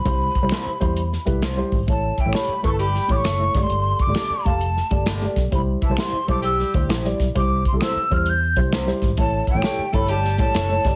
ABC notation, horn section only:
X:1
M:4/4
L:1/8
Q:"Swing" 1/4=132
K:C
V:1 name="Horn section"
z8 | z [E,E] [G,G] [A,A] [G,G]2 z2 | z8 | z [E,E] [G,G] [A,A] [G,G]2 z2 |
z8 | z [E,E] [G,G] [A,A] [G,G]2 z2 |]